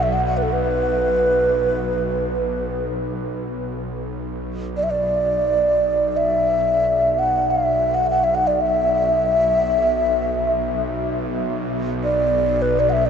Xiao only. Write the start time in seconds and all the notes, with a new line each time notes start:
0.03 E5
0.13 F#5
0.25 F#5
0.37 B4
0.43 A4
0.53 B4
4.77 D5
4.83 E5
4.90 D5
6.17 E5
7.19 F#5
7.50 E5
7.94 F#5
8.10 F#5
8.24 E5
8.35 F#5
8.47 D5
8.61 E5
12.04 D5
12.62 B4
12.80 D5
12.90 E5 F#5
13.06 D5